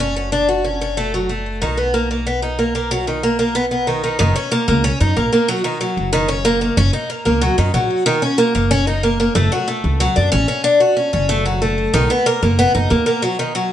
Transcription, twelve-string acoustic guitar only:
0.00 0.15 C#4 loud
0.16 0.31 C#4 medium
0.32 0.47 D4 medium
0.48 0.63 F#4 medium
0.64 0.79 C#4 medium
0.81 0.96 C#4 medium
0.97 1.12 A3 medium
1.14 1.28 F#3 medium
1.29 1.60 A3 medium
1.62 1.76 D#3 medium
1.77 1.92 B3 medium
1.94 2.09 A#3 medium
2.11 2.25 A#3 medium
2.27 2.41 B3 medium
2.42 2.57 D#4 medium
2.59 2.73 A#3 medium
2.75 2.89 A#3 medium
2.91 3.06 F#3 loud
3.07 3.22 D#3 medium
3.23 3.38 A#3 medium
3.39 3.54 A#3 medium
3.55 3.64 B3 medium
3.71 3.86 B3 medium
3.87 4.02 D#3 medium
4.04 4.18 D#3 medium
4.19 4.34 D#3 loud
4.36 4.50 C#4 medium
4.52 4.66 A#3 loud
4.68 4.83 A#3 medium
4.84 4.99 C#4 loud
5.01 5.15 D#4 medium
5.17 5.31 A#3 medium
5.33 5.47 A#3 medium
5.48 5.63 F#3 loud
5.64 5.79 D#3 medium
5.81 6.12 F#3 medium
6.13 6.28 D#3 loud
6.28 6.44 C#4 medium
6.45 6.60 A#3 loud
6.61 6.76 A#3 medium
6.77 6.92 C#4 loud
6.93 7.08 D#4 medium
7.10 7.24 A#3 medium
7.25 7.40 A#3 medium
7.41 7.57 F#3 medium
7.58 7.73 D#3 medium
7.74 8.05 F#3 medium
8.06 8.21 D#3 loud
8.22 8.37 C#4 medium
8.38 8.53 A#3 medium
8.55 8.70 A#3 medium
8.71 8.86 C#4 loud
8.87 9.02 D#4 medium
9.03 9.18 A#3 medium
9.20 9.34 A#3 medium
9.35 9.50 A3 loud
9.52 9.67 F#3 medium
9.68 9.99 A3 medium
10.00 10.15 F#3 loud
10.16 10.31 D4 medium
10.32 10.47 C#4 loud
10.48 10.63 C#4 medium
10.64 10.79 D4 loud
10.80 10.95 F#4 medium
10.97 11.12 C#4 medium
11.13 11.28 C#4 medium
11.29 11.44 A3 loud
11.46 11.60 F#3 medium
11.62 11.92 A3 medium
11.94 12.08 D#3 loud
12.10 12.25 B3 medium
12.26 12.41 A#3 loud
12.43 12.57 A#3 medium
12.59 12.73 B3 loud
12.75 12.89 D#4 medium
12.90 13.05 A#3 medium
13.06 13.21 A#3 medium
13.22 13.37 F#3 loud
13.39 13.54 D#3 medium
13.55 13.72 F#3 medium

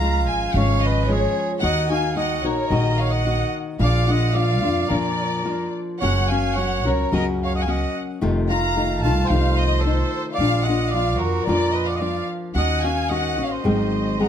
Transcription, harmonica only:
0.00 0.33 F5 medium
0.33 0.61 F5 medium
0.59 0.89 C#5 medium
0.87 1.14 B4 medium
1.13 1.52 G#4 medium
1.64 1.90 D#5 medium
1.92 2.15 F5 medium
2.17 2.48 D#5 medium
2.46 2.73 A#4 medium
2.73 3.03 A#4 medium
3.02 3.14 C#5 medium
3.12 3.54 D#5 medium
3.84 4.13 D5 medium
4.12 4.37 D#5 medium
4.35 4.91 D5 medium
4.90 5.75 A#4 medium
6.00 6.32 C#5 medium
6.31 6.58 F5 medium
6.57 6.89 C#5 medium
6.87 7.13 A#4 medium
7.14 7.26 A#4 medium
7.44 7.55 C#5 medium
7.55 7.63 D#5 medium
7.61 7.72 F5 medium
7.71 7.97 D#5 medium
8.49 9.00 F5 medium
9.03 9.28 F5 medium
9.26 9.56 C5 medium
9.56 9.83 C5 medium
9.81 10.25 A4 medium
10.35 10.66 D5 medium
10.64 10.93 D#5 medium
10.92 11.21 D5 medium
11.20 11.46 F#4 medium
11.45 11.76 A#4 medium
11.75 11.90 B4 medium
11.88 11.97 D5 medium
11.96 12.02 D#5 medium
12.00 12.29 D5 medium
12.58 12.86 D#5 medium
12.85 13.13 F5 medium
13.11 13.46 D#5 medium
13.44 13.53 C#5 soft
13.52 14.21 C5 medium
14.21 14.28 F#5 medium

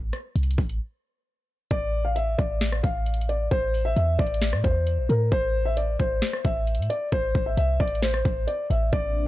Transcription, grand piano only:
1.71 2.03 D5 loud
2.05 2.14 F5 medium
2.16 2.34 E5 medium
2.38 2.81 D5 medium
2.83 3.26 F5 medium
3.29 3.47 D5 medium
3.51 3.83 C5 loud
3.85 3.94 E5 medium
3.97 4.15 E5 medium
4.19 4.61 D5 medium
4.64 5.06 C5 medium
5.10 5.28 A#4 medium
5.32 5.64 C5 loud
5.65 5.75 E5 medium
5.77 5.95 D5 medium
5.99 6.42 C5 medium
6.45 6.87 E5 medium
6.90 7.08 D5 medium
7.13 7.44 C5 loud
7.46 7.55 E5 medium
7.57 7.76 E5 medium
7.80 7.98 D5 medium
8.02 8.45 C5 medium
8.47 8.66 D5 medium
8.70 8.88 E5 medium
8.93 9.25 D5 loud

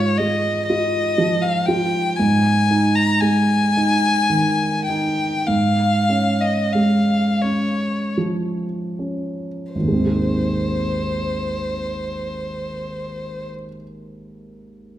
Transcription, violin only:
0.00 0.19 C#5 soft
0.17 0.66 D#5 medium
0.66 1.44 D#5 medium
1.42 1.67 F5 soft
1.66 2.18 G5 medium
2.16 2.97 G#5 medium
2.95 3.22 A#5 soft
3.20 4.86 G#5 medium
4.86 5.48 G5 soft
5.46 6.43 F5 medium
6.41 6.74 D#5 soft
6.73 7.43 F5 soft
7.42 8.16 C#5 soft
9.72 13.47 C5 soft

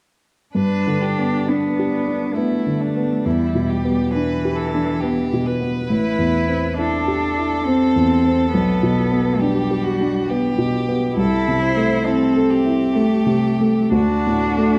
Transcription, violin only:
0.55 1.03 B4 soft
1.02 1.48 G4 soft
1.47 2.36 D4 soft
2.34 2.82 E4 soft
2.80 3.27 D4 soft
3.25 3.71 E4 soft
3.69 4.12 G4 soft
4.13 4.57 B4 soft
4.56 5.02 A4 soft
5.00 5.48 G4 soft
5.46 6.79 B4 soft
6.78 9.41 A4 soft
9.40 9.85 G4 soft
9.84 10.31 F#4 soft
10.29 11.18 G4 soft
11.19 11.62 A4 soft
11.63 12.08 C5 soft
12.06 12.53 A4 soft
12.51 13.94 G4 soft
13.95 14.79 F#4 soft

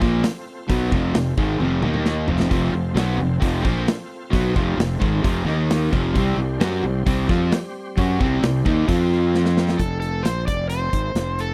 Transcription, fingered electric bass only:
0.01 0.22 A#1 medium
0.69 0.90 B1 medium
0.92 1.13 F1 loud
1.16 1.37 F1 medium
1.37 1.59 G#1 medium
1.61 1.82 F1 medium
1.82 2.25 D#2 medium
2.29 2.50 F1 medium
2.51 2.72 F1 medium
2.73 2.94 F1 medium
2.95 3.17 B1 loud
3.18 3.40 F1 medium
3.42 3.63 F1 medium
3.64 3.86 A#1 medium
4.33 4.54 B1 medium
4.56 4.77 F1 loud
4.77 4.99 F1 medium
5.01 5.23 G#1 medium
5.24 5.45 F1 medium
5.45 5.88 D#2 medium
5.93 6.14 F1 medium
6.15 6.36 C2 medium
6.37 6.59 C2 medium
6.60 6.81 F#2 loud
6.83 7.05 C2 medium
7.06 7.27 C2 medium
7.29 7.50 F2 medium
7.97 8.18 F#2 medium
8.21 8.41 C2 medium
8.43 8.64 C2 medium
8.66 8.87 D#2 medium
8.88 9.75 F2 medium
9.79 10.22 F1 medium
10.25 10.46 A#1 medium
10.48 10.90 F1 medium
10.93 11.14 G#1 medium
11.15 11.54 F1 medium

